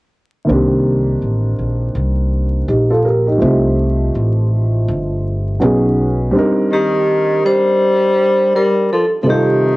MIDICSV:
0, 0, Header, 1, 5, 480
1, 0, Start_track
1, 0, Tempo, 731707
1, 320, Time_signature, 4, 2, 24, 8
1, 6406, End_track
2, 0, Start_track
2, 0, Title_t, "Vibraphone"
2, 0, Program_c, 0, 11
2, 4417, Note_on_c, 0, 67, 80
2, 4894, Note_on_c, 0, 72, 97
2, 4902, Note_off_c, 0, 67, 0
2, 5581, Note_off_c, 0, 72, 0
2, 5615, Note_on_c, 0, 70, 91
2, 5855, Note_off_c, 0, 70, 0
2, 5856, Note_on_c, 0, 69, 80
2, 5944, Note_off_c, 0, 69, 0
2, 6055, Note_on_c, 0, 69, 60
2, 6085, Note_off_c, 0, 69, 0
2, 6100, Note_on_c, 0, 67, 78
2, 6406, Note_off_c, 0, 67, 0
2, 6406, End_track
3, 0, Start_track
3, 0, Title_t, "Upright piano"
3, 0, Program_c, 1, 0
3, 293, Note_on_c, 1, 51, 55
3, 307, Note_on_c, 1, 58, 55
3, 319, Note_on_c, 1, 60, 56
3, 331, Note_on_c, 1, 62, 57
3, 344, Note_on_c, 1, 67, 65
3, 1739, Note_off_c, 1, 62, 0
3, 1746, Note_off_c, 1, 67, 0
3, 1759, Note_on_c, 1, 67, 51
3, 1762, Note_on_c, 1, 63, 43
3, 1898, Note_off_c, 1, 67, 0
3, 1900, Note_off_c, 1, 63, 0
3, 1905, Note_on_c, 1, 69, 59
3, 1908, Note_on_c, 1, 65, 50
3, 1995, Note_off_c, 1, 69, 0
3, 1996, Note_off_c, 1, 65, 0
3, 2001, Note_on_c, 1, 70, 58
3, 2005, Note_on_c, 1, 67, 47
3, 2137, Note_off_c, 1, 67, 0
3, 2139, Note_off_c, 1, 70, 0
3, 2147, Note_on_c, 1, 67, 55
3, 2151, Note_on_c, 1, 63, 47
3, 2200, Note_off_c, 1, 51, 0
3, 2207, Note_off_c, 1, 58, 0
3, 2213, Note_off_c, 1, 60, 0
3, 2216, Note_on_c, 1, 53, 60
3, 2227, Note_on_c, 1, 57, 59
3, 2240, Note_on_c, 1, 60, 55
3, 2243, Note_off_c, 1, 63, 0
3, 2253, Note_on_c, 1, 63, 55
3, 2257, Note_off_c, 1, 67, 0
3, 2266, Note_on_c, 1, 67, 69
3, 3642, Note_off_c, 1, 53, 0
3, 3647, Note_off_c, 1, 57, 0
3, 3654, Note_off_c, 1, 60, 0
3, 3660, Note_off_c, 1, 63, 0
3, 3667, Note_off_c, 1, 67, 0
3, 3672, Note_on_c, 1, 54, 60
3, 3677, Note_on_c, 1, 59, 58
3, 3685, Note_on_c, 1, 61, 60
3, 3692, Note_on_c, 1, 63, 57
3, 3697, Note_on_c, 1, 68, 70
3, 4140, Note_on_c, 1, 55, 73
3, 4151, Note_on_c, 1, 60, 61
3, 4156, Note_off_c, 1, 54, 0
3, 4159, Note_off_c, 1, 59, 0
3, 4162, Note_off_c, 1, 61, 0
3, 4163, Note_on_c, 1, 62, 62
3, 4166, Note_off_c, 1, 63, 0
3, 4168, Note_off_c, 1, 68, 0
3, 4176, Note_on_c, 1, 63, 64
3, 4189, Note_on_c, 1, 70, 76
3, 6044, Note_off_c, 1, 55, 0
3, 6049, Note_off_c, 1, 60, 0
3, 6055, Note_off_c, 1, 62, 0
3, 6056, Note_on_c, 1, 48, 59
3, 6062, Note_off_c, 1, 63, 0
3, 6065, Note_on_c, 1, 55, 55
3, 6068, Note_off_c, 1, 70, 0
3, 6076, Note_on_c, 1, 60, 57
3, 6085, Note_on_c, 1, 63, 54
3, 6097, Note_on_c, 1, 65, 56
3, 6106, Note_on_c, 1, 69, 63
3, 6406, Note_off_c, 1, 48, 0
3, 6406, Note_off_c, 1, 55, 0
3, 6406, Note_off_c, 1, 60, 0
3, 6406, Note_off_c, 1, 63, 0
3, 6406, Note_off_c, 1, 65, 0
3, 6406, Note_off_c, 1, 69, 0
3, 6406, End_track
4, 0, Start_track
4, 0, Title_t, "Tenor saxophone"
4, 0, Program_c, 2, 66
4, 4409, Note_on_c, 2, 51, 83
4, 4858, Note_off_c, 2, 51, 0
4, 4890, Note_on_c, 2, 55, 102
4, 5579, Note_off_c, 2, 55, 0
4, 5609, Note_on_c, 2, 55, 76
4, 5828, Note_off_c, 2, 55, 0
4, 5854, Note_on_c, 2, 53, 70
4, 5942, Note_off_c, 2, 53, 0
4, 6051, Note_on_c, 2, 53, 45
4, 6081, Note_off_c, 2, 53, 0
4, 6091, Note_on_c, 2, 51, 77
4, 6406, Note_off_c, 2, 51, 0
4, 6406, End_track
5, 0, Start_track
5, 0, Title_t, "Upright bass"
5, 0, Program_c, 3, 32
5, 323, Note_on_c, 3, 36, 87
5, 777, Note_off_c, 3, 36, 0
5, 799, Note_on_c, 3, 33, 71
5, 1027, Note_off_c, 3, 33, 0
5, 1040, Note_on_c, 3, 34, 71
5, 1268, Note_off_c, 3, 34, 0
5, 1279, Note_on_c, 3, 36, 83
5, 1736, Note_off_c, 3, 36, 0
5, 1759, Note_on_c, 3, 34, 85
5, 2216, Note_off_c, 3, 34, 0
5, 2242, Note_on_c, 3, 36, 85
5, 2697, Note_off_c, 3, 36, 0
5, 2724, Note_on_c, 3, 33, 77
5, 3178, Note_off_c, 3, 33, 0
5, 3205, Note_on_c, 3, 31, 85
5, 3659, Note_off_c, 3, 31, 0
5, 3685, Note_on_c, 3, 35, 93
5, 4139, Note_off_c, 3, 35, 0
5, 6406, End_track
0, 0, End_of_file